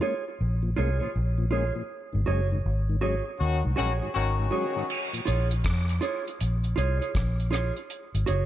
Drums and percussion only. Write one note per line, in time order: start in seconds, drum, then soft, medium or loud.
4.90 crash medium
5.14 closed hi-hat medium
5.27 closed hi-hat medium
5.51 closed hi-hat medium
5.64 kick loud
5.64 cross-stick loud
5.64 closed hi-hat medium
5.89 closed hi-hat medium
6.02 closed hi-hat medium
6.28 closed hi-hat medium
6.41 closed hi-hat medium
6.64 closed hi-hat soft
6.78 closed hi-hat medium
7.02 closed hi-hat soft
7.15 kick loud
7.15 cross-stick medium
7.15 closed hi-hat medium
7.40 closed hi-hat medium
7.53 cross-stick medium
7.53 closed hi-hat medium
7.77 closed hi-hat soft
7.90 closed hi-hat medium
8.15 closed hi-hat medium
8.27 closed hi-hat medium